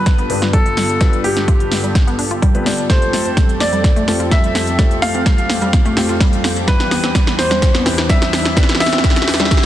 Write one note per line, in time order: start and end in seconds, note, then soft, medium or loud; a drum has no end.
0.00 0.27 G2 loud
0.00 2.86 G2 medium
0.00 2.86 D3 medium
0.00 0.27 B3 medium
0.00 2.86 B3 medium
0.00 0.27 D4 medium
0.00 0.27 F4 medium
0.00 2.86 F4 medium
0.00 0.27 G4 medium
0.00 6.64 A4 medium
0.00 0.27 B4 loud
0.00 0.44 B4 medium
0.06 kick loud
0.06 snare medium
0.06 closed hi-hat medium
0.18 0.23 B3 loud
0.18 closed hi-hat soft
0.30 0.98 G2 medium
0.30 0.98 B3 medium
0.30 0.34 D4 medium
0.30 0.98 D4 medium
0.30 0.98 F4 medium
0.30 0.98 G4 medium
0.30 0.98 B4 medium
0.30 open hi-hat loud
0.42 0.49 F4 medium
0.42 snare medium
0.42 closed hi-hat soft
0.53 0.61 G3 loud
0.53 1.15 A4 medium
0.53 kick loud
0.53 closed hi-hat medium
0.66 closed hi-hat soft
0.77 snare medium
0.77 open hi-hat loud
0.89 closed hi-hat soft
1.01 2.16 G2 loud
1.01 1.11 G3 medium
1.01 2.16 B3 medium
1.01 2.16 D4 medium
1.01 2.16 F4 medium
1.01 2.16 G4 medium
1.01 2.16 B4 loud
1.01 kick loud
1.01 snare medium
1.01 closed hi-hat medium
1.13 closed hi-hat soft
1.24 1.35 B3 medium
1.24 2.81 G4 medium
1.24 open hi-hat loud
1.37 1.43 D4 medium
1.37 snare medium
1.37 closed hi-hat soft
1.48 1.55 F4 loud
1.48 kick loud
1.48 closed hi-hat medium
1.60 closed hi-hat soft
1.72 snare medium
1.72 open hi-hat medium
1.84 1.90 G3 medium
1.84 closed hi-hat soft
1.95 kick loud
1.95 snare medium
1.95 closed hi-hat medium
2.07 2.11 B3 loud
2.07 closed hi-hat soft
2.19 2.23 D4 medium
2.19 open hi-hat loud
2.31 2.38 F4 medium
2.31 closed hi-hat soft
2.42 2.50 G3 loud
2.42 kick loud
2.42 closed hi-hat medium
2.55 2.63 G2 medium
2.55 2.63 B3 medium
2.55 2.63 D4 medium
2.55 2.63 F4 medium
2.55 2.63 G4 medium
2.55 2.63 B4 medium
2.55 closed hi-hat soft
2.66 2.87 B3 medium
2.66 2.87 D4 medium
2.66 2.87 F4 medium
2.66 2.87 G4 medium
2.66 2.87 D5 medium
2.66 snare medium
2.66 open hi-hat medium
2.78 closed hi-hat soft
2.90 6.64 F2 medium
2.90 6.64 F3 medium
2.90 3.00 G3 medium
2.90 4.05 A3 loud
2.90 4.05 C4 medium
2.90 6.64 C4 medium
2.90 4.05 F4 medium
2.90 4.05 G4 medium
2.90 9.66 G4 medium
2.90 4.05 A4 loud
2.90 3.51 C5 loud
2.90 kick loud
2.90 snare medium
2.90 closed hi-hat medium
2.90 riser medium
3.02 closed hi-hat soft
3.13 3.24 A3 medium
3.13 snare medium
3.13 open hi-hat loud
3.26 3.32 C4 medium
3.26 closed hi-hat soft
3.37 3.44 G3 medium
3.37 kick loud
3.37 snare medium
3.37 closed hi-hat medium
3.49 closed hi-hat soft
3.60 4.22 D5 medium
3.60 snare medium
3.60 open hi-hat medium
3.73 3.79 G3 medium
3.73 closed hi-hat soft
3.84 kick loud
3.84 snare medium
3.84 closed hi-hat medium
3.96 4.00 A3 loud
3.96 closed hi-hat soft
4.08 4.76 A3 medium
4.08 4.76 C4 medium
4.08 4.12 C4 medium
4.08 4.76 F4 medium
4.08 4.76 G4 medium
4.08 4.76 A4 medium
4.08 snare medium
4.08 open hi-hat loud
4.20 4.27 F4 medium
4.20 closed hi-hat soft
4.31 4.39 G3 loud
4.31 4.93 E5 medium
4.31 kick loud
4.31 snare medium
4.31 closed hi-hat medium
4.44 closed hi-hat soft
4.55 snare medium
4.55 open hi-hat medium
4.67 closed hi-hat soft
4.79 4.89 G3 medium
4.79 5.94 A3 loud
4.79 5.94 C4 medium
4.79 5.94 F4 medium
4.79 5.94 G4 medium
4.79 5.94 A4 loud
4.79 kick loud
4.79 snare medium
4.79 closed hi-hat medium
4.91 closed hi-hat soft
5.02 5.13 A3 medium
5.02 6.58 F5 medium
5.02 snare medium
5.02 open hi-hat loud
5.15 5.21 C4 medium
5.15 closed hi-hat soft
5.26 5.33 G3 medium
5.26 kick loud
5.26 snare medium
5.26 closed hi-hat medium
5.38 closed hi-hat soft
5.50 snare medium
5.50 open hi-hat medium
5.62 5.68 G3 medium
5.62 closed hi-hat soft
5.73 kick loud
5.73 snare medium
5.73 closed hi-hat medium
5.86 5.89 A3 loud
5.86 closed hi-hat soft
5.97 6.65 A3 medium
5.97 6.65 C4 medium
5.97 6.01 C4 medium
5.97 6.65 F4 medium
5.97 6.65 G4 medium
5.97 6.65 A4 medium
5.97 snare medium
5.97 open hi-hat loud
6.09 6.16 F4 medium
6.09 closed hi-hat soft
6.20 6.28 G3 loud
6.20 kick loud
6.20 snare medium
6.20 closed hi-hat medium
6.33 closed hi-hat soft
6.44 snare medium
6.44 open hi-hat medium
6.56 closed hi-hat soft
6.68 9.66 E2 medium
6.68 7.83 E3 loud
6.68 9.66 E3 medium
6.68 6.78 G3 medium
6.68 7.83 G3 medium
6.68 7.83 C4 medium
6.68 9.66 D4 medium
6.68 7.83 E4 medium
6.68 7.83 G4 medium
6.68 7.29 B4 loud
6.68 kick loud
6.68 snare medium
6.68 closed hi-hat medium
6.80 snare medium
6.80 closed hi-hat soft
6.91 7.02 B3 medium
6.91 snare medium
6.91 open hi-hat loud
7.04 7.10 C4 medium
7.04 snare medium
7.04 closed hi-hat soft
7.15 7.22 G3 medium
7.15 kick loud
7.15 snare medium
7.15 closed hi-hat loud
7.27 snare medium
7.27 closed hi-hat soft
7.38 8.00 C5 loud
7.38 snare medium
7.38 open hi-hat medium
7.51 7.57 G3 medium
7.51 snare medium
7.51 closed hi-hat soft
7.62 kick loud
7.62 snare loud
7.62 closed hi-hat loud
7.74 7.78 B3 loud
7.74 snare medium
7.74 closed hi-hat soft
7.86 8.54 E3 medium
7.86 8.54 B3 medium
7.86 8.54 C4 medium
7.86 7.90 C4 medium
7.86 8.54 E4 medium
7.86 8.54 G4 medium
7.86 8.54 B4 loud
7.86 snare medium
7.86 open hi-hat loud
7.98 8.05 E4 medium
7.98 snare medium
8.09 8.16 G3 loud
8.09 8.71 E5 medium
8.09 kick loud
8.09 snare loud
8.09 closed hi-hat loud
8.22 snare medium
8.22 closed hi-hat soft
8.33 snare loud
8.33 open hi-hat medium
8.45 snare medium
8.45 closed hi-hat soft
8.57 9.66 E3 loud
8.57 8.67 G3 medium
8.57 9.66 B3 medium
8.57 9.66 C4 medium
8.57 9.66 E4 medium
8.57 9.66 G4 medium
8.57 9.66 B4 loud
8.57 kick loud
8.57 snare loud
8.57 closed hi-hat medium
8.63 snare medium
8.69 snare medium
8.69 closed hi-hat soft
8.75 snare medium
8.80 8.91 B3 medium
8.80 9.66 E5 loud
8.80 snare loud
8.80 open hi-hat loud
8.86 snare medium
8.92 8.99 C4 medium
8.92 snare medium
8.92 closed hi-hat soft
8.98 snare medium
9.04 9.11 G3 medium
9.04 kick loud
9.04 snare loud
9.04 closed hi-hat loud
9.10 snare loud
9.16 snare medium
9.16 closed hi-hat soft
9.22 snare medium
9.28 snare loud
9.28 open hi-hat medium
9.34 snare medium
9.40 9.46 G3 medium
9.40 snare medium
9.40 closed hi-hat soft
9.45 snare medium
9.51 kick loud
9.51 snare loud
9.51 closed hi-hat loud
9.51 reverse cymbal medium
9.57 snare medium